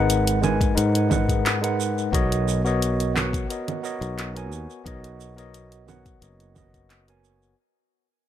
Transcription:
0.00 0.72 G#1 medium
0.00 0.38 G#3 medium
0.00 0.38 D#4 medium
0.00 0.39 A#4 medium
0.00 0.39 B4 medium
0.00 0.40 F#5 medium
0.10 closed hi-hat medium
0.10 shaker soft
0.27 closed hi-hat soft
0.27 shaker soft
0.41 0.72 G#3 medium
0.41 0.73 D#4 medium
0.41 0.73 A#4 medium
0.41 0.73 B4 medium
0.41 0.74 G#5 medium
0.41 low conga medium
0.41 shaker medium
0.61 kick medium
0.61 closed hi-hat soft
0.61 shaker soft
0.75 2.08 G#2 medium
0.75 1.07 G#3 medium
0.75 1.07 D#4 medium
0.75 1.07 A#4 medium
0.75 1.08 B4 medium
0.75 1.08 F#5 medium
0.75 closed hi-hat medium
0.75 shaker soft
0.95 closed hi-hat soft
0.95 shaker soft
1.09 1.58 G#3 medium
1.09 1.58 D#4 medium
1.09 1.58 A#4 medium
1.09 1.59 B4 medium
1.09 1.59 F#5 medium
1.09 kick loud
1.09 low conga medium
1.09 shaker medium
1.29 kick medium
1.29 closed hi-hat soft
1.29 shaker soft
1.46 clap medium
1.46 closed hi-hat medium
1.46 shaker soft
1.61 2.08 G#3 medium
1.61 2.09 D#4 medium
1.61 2.09 A#4 medium
1.61 2.10 B4 medium
1.61 2.10 F#5 medium
1.61 closed hi-hat soft
1.61 shaker soft
1.80 shaker medium
1.98 shaker soft
2.12 3.44 B1 medium
2.12 2.60 B3 medium
2.12 2.60 F#4 medium
2.12 2.61 A#4 medium
2.12 2.61 C#5 medium
2.12 2.61 D#5 loud
2.12 kick loud
2.12 closed hi-hat medium
2.12 shaker soft
2.32 closed hi-hat soft
2.32 shaker soft
2.48 shaker medium
2.64 3.11 B3 medium
2.64 3.11 F#4 medium
2.64 3.12 A#4 medium
2.64 3.12 C#5 medium
2.64 3.13 D#5 medium
2.64 shaker soft
2.82 closed hi-hat medium
2.82 shaker soft
3.00 closed hi-hat soft
3.00 shaker soft
3.14 3.45 B3 medium
3.14 3.45 F#4 medium
3.14 3.46 A#4 medium
3.14 3.46 C#5 medium
3.14 3.47 F#5 medium
3.14 clap medium
3.14 low conga medium
3.14 shaker medium
3.33 kick medium
3.33 closed hi-hat soft
3.33 shaker soft
3.49 3.80 B3 medium
3.49 3.80 F#4 medium
3.49 3.81 A#4 medium
3.49 3.81 C#5 medium
3.49 3.81 D#5 medium
3.49 closed hi-hat medium
3.49 shaker soft
3.68 closed hi-hat soft
3.68 low conga medium
3.68 shaker soft
3.82 4.30 B3 medium
3.82 4.31 F#4 medium
3.82 4.31 A#4 medium
3.82 4.32 C#5 medium
3.82 4.32 D#5 medium
3.82 shaker medium
4.01 4.51 B1 medium
4.01 closed hi-hat soft
4.01 shaker soft
4.19 clap medium
4.19 closed hi-hat medium
4.19 shaker soft
4.34 4.81 B3 medium
4.34 4.82 F#4 medium
4.34 4.82 A#4 medium
4.34 4.83 C#5 medium
4.34 4.83 G#5 medium
4.34 closed hi-hat soft
4.34 shaker soft
4.51 4.66 D#2 medium
4.51 shaker medium
4.70 shaker soft
4.84 6.17 B1 medium
4.84 5.33 B3 medium
4.84 5.33 F#4 medium
4.84 5.34 A#4 medium
4.84 5.34 C#5 medium
4.84 5.34 D#5 medium
4.84 kick loud
4.84 closed hi-hat medium
4.84 shaker soft
5.04 closed hi-hat soft
5.04 shaker soft
5.20 shaker medium
5.36 5.83 B3 medium
5.36 5.84 F#4 medium
5.36 5.84 A#4 medium
5.36 5.84 C#5 medium
5.36 5.85 D#5 medium
5.36 closed hi-hat soft
5.36 shaker soft
5.54 closed hi-hat medium
5.54 shaker soft
5.72 closed hi-hat soft
5.72 shaker soft
5.86 6.17 B3 medium
5.86 6.18 F#4 medium
5.86 6.18 A#4 medium
5.86 6.19 C#5 medium
5.86 6.19 F#5 medium
5.86 low conga medium
5.86 shaker medium
6.06 kick medium
6.06 closed hi-hat soft
6.06 shaker soft
6.20 7.53 F#1 medium
6.20 6.52 B3 medium
6.20 6.53 F#4 medium
6.20 6.53 A#4 medium
6.20 6.53 C#5 medium
6.20 6.54 D#5 medium
6.20 closed hi-hat medium
6.20 shaker soft
6.40 closed hi-hat soft
6.40 shaker soft
6.55 7.03 B3 medium
6.55 7.03 F#4 medium
6.55 7.04 A#4 medium
6.55 7.04 C#5 medium
6.55 7.05 D#5 medium
6.55 kick medium
6.55 low conga medium
6.55 shaker medium
6.74 kick medium
6.74 closed hi-hat soft
6.74 shaker soft
6.90 clap medium
6.90 closed hi-hat medium
6.90 shaker soft
7.07 7.54 B3 medium
7.07 7.54 F#4 medium
7.07 7.55 A#4 medium
7.07 7.55 C#5 medium
7.07 7.55 G#5 medium
7.07 closed hi-hat soft
7.07 shaker soft
7.24 shaker medium
7.42 shaker soft

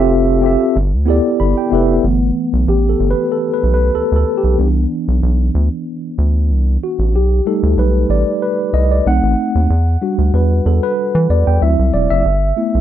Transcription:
0.00 0.56 F1 medium
0.00 0.42 C4 loud
0.00 0.43 F4 loud
0.00 0.43 G4 loud
0.00 0.45 A4 medium
0.00 0.46 E5 loud
0.42 0.74 C4 medium
0.42 0.75 F4 medium
0.42 0.75 G4 medium
0.42 0.76 A4 medium
0.46 0.76 E5 medium
0.76 0.94 G1 loud
0.93 1.20 D2 medium
1.06 1.62 B3 medium
1.06 1.63 E4 medium
1.06 1.63 G4 medium
1.06 1.64 A4 medium
1.10 1.64 D5 medium
1.40 1.54 G1 medium
1.40 1.55 B5 medium
1.58 1.71 G5 medium
1.70 1.99 F1 medium
1.70 1.99 B3 medium
1.70 1.99 E4 medium
1.70 2.00 G4 medium
1.70 2.00 A4 medium
1.70 2.02 E5 medium
1.75 2.01 B4 medium
2.04 2.31 G1 loud
2.04 2.95 E3 medium
2.04 2.95 A3 soft
2.04 2.95 B3 medium
2.53 2.65 B1 medium
2.68 2.95 A1 loud
2.68 2.90 G4 medium
2.89 3.08 A4 medium
3.00 3.14 G1 loud
3.11 3.32 B4 medium
3.32 3.53 A4 medium
3.54 3.72 B4 medium
3.63 3.90 B1 medium
3.74 3.95 B4 medium
3.95 4.02 D2 soft
3.95 4.14 A4 medium
4.12 4.24 D2 medium
4.16 4.38 A4 medium
4.37 4.67 G4 medium
4.44 4.56 B1 medium
4.57 4.86 C2 medium
4.57 5.01 E3 medium
4.57 5.02 B3 medium
4.57 5.02 D4 medium
5.08 5.20 B1 medium
5.23 5.50 B1 loud
5.55 5.69 D2 medium
6.18 6.52 D2 medium
6.50 6.77 C2 medium
6.83 7.15 F#4 medium
6.99 7.15 A1 medium
7.13 7.41 B1 loud
7.13 7.47 G4 medium
7.45 8.37 G3 medium
7.45 8.37 A3 soft
7.45 8.38 D#4 medium
7.45 7.76 A4 medium
7.63 7.75 D2 medium
7.77 8.05 B1 medium
7.77 8.11 B4 medium
8.09 8.24 A1 medium
8.09 8.43 D5 medium
8.42 8.75 B4 medium
8.73 9.01 C2 loud
8.73 8.81 D#5 loud
8.91 9.06 D5 medium
9.06 9.20 B1 medium
9.06 9.66 A3 medium
9.06 9.67 C4 medium
9.06 9.67 D#4 medium
9.06 9.98 F#5 loud
9.23 9.35 A1 medium
9.55 9.67 D#2 medium
9.70 9.97 E2 medium
10.02 10.44 G3 medium
10.02 10.45 D4 medium
10.02 10.45 F#4 medium
10.18 10.31 D2 medium
10.33 10.61 E2 medium
10.33 10.67 B4 medium
10.66 10.80 E2 medium
10.66 10.81 A4 medium
10.83 11.26 B4 medium
11.15 11.27 E3 medium
11.30 11.44 E2 medium
11.30 11.37 D5 medium
11.47 11.59 E2 medium
11.47 11.61 G5 medium
11.61 11.76 D2 medium
11.61 12.04 F#3 medium
11.61 12.04 C4 soft
11.61 12.05 E4 medium
11.61 11.94 E5 medium
11.79 11.91 C2 medium
11.93 12.08 E1 medium
11.93 12.01 D5 medium
12.10 12.23 F#1 medium
12.10 12.70 E5 loud
12.25 12.52 G1 loud
12.56 12.81 A3 medium
12.56 12.81 B3 soft
12.56 12.81 E4 medium
12.74 12.81 B1 medium

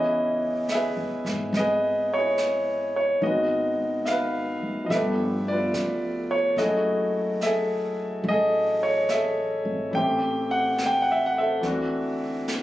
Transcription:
0.00 0.92 C#2 medium
0.00 3.20 E3 soft
0.00 3.21 B3 soft
0.00 3.22 C#4 soft
0.00 2.16 E4 medium
0.00 0.73 G#4 soft
0.00 0.73 B4 soft
0.00 0.67 D#5 medium
0.69 1.57 E5 medium
0.69 snare soft
0.69 hi-hat pedal soft
0.74 1.58 G#4 medium
0.74 1.57 B4 medium
0.97 1.23 E2 soft
1.25 1.51 G#2 medium
1.25 snare soft
1.53 3.17 G#1 medium
1.53 brush sweep soft
1.53 snare soft
1.57 2.17 G#4 medium
1.57 3.20 B4 medium
1.57 2.08 D#5 medium
2.14 3.21 E4 soft
2.14 2.95 C#5 medium
2.18 3.22 G#4 soft
2.38 snare soft
2.38 hi-hat pedal soft
2.96 3.21 C#5 medium
3.22 4.58 G#1 medium
3.22 4.90 D#3 soft
3.22 4.90 G#3 soft
3.22 4.90 B3 soft
3.22 3.25 F#4 soft
3.22 4.04 D#5 medium
3.22 brush sweep soft
3.26 4.88 F#4 soft
3.26 4.10 B4 soft
4.06 4.08 E5 medium
4.06 4.88 F5 medium
4.06 snare soft
4.06 hi-hat pedal soft
4.12 4.88 B4 medium
4.62 muted upright bass stroke soft
4.84 6.55 F3 soft
4.84 4.90 D#5 medium
4.89 5.70 G1 medium
4.89 6.56 A3 soft
4.89 6.59 B3 soft
4.89 5.48 E5 medium
4.89 brush sweep soft
4.89 snare soft
4.94 6.61 G4 medium
4.94 6.56 A4 medium
4.94 5.50 B4 medium
5.48 6.56 B4 medium
5.48 6.34 D5 medium
5.53 6.57 F4 soft
5.74 6.54 C#2 medium
5.74 snare soft
5.74 hi-hat pedal soft
6.31 6.59 C#5 medium
6.56 8.20 F#1 medium
6.56 9.93 F#3 medium
6.56 9.91 A3 soft
6.56 9.94 E4 soft
6.56 9.94 F#4 medium
6.56 7.44 D#5 medium
6.56 brush sweep soft
6.56 snare soft
6.61 7.44 G#4 medium
6.61 7.44 A4 soft
7.41 8.22 E5 medium
7.41 snare soft
7.41 hi-hat pedal soft
7.45 8.29 G#4 medium
7.45 8.30 A4 medium
8.24 9.61 A1 medium
8.24 brush sweep soft
8.29 9.12 G#4 medium
8.29 9.12 A4 medium
8.29 8.85 D#5 medium
8.83 9.08 C#5 medium
9.09 9.90 E5 medium
9.09 snare soft
9.09 hi-hat pedal soft
9.14 9.92 G#4 soft
9.14 9.92 A4 medium
9.65 9.91 G#1 medium
9.91 11.59 A1 medium
9.91 11.59 E3 soft
9.91 11.63 A3 soft
9.91 11.61 C4 soft
9.91 10.53 G5 medium
9.91 brush sweep soft
9.97 11.65 G4 soft
9.97 11.39 C5 medium
9.97 11.10 E5 medium
10.51 10.88 F#5 medium
10.78 snare soft
10.78 hi-hat pedal soft
10.86 10.98 G5 medium
11.02 11.12 F#5 medium
11.12 11.23 E5 medium
11.26 11.37 F#5 medium
11.38 12.62 A4 medium
11.38 12.62 C5 soft
11.38 12.46 E5 medium
11.61 12.62 D2 medium
11.61 12.62 E3 soft
11.61 12.62 C4 soft
11.61 12.62 D4 soft
11.61 brush sweep soft
11.61 snare soft
11.66 12.62 F#4 medium
12.48 snare soft
12.48 hi-hat pedal soft

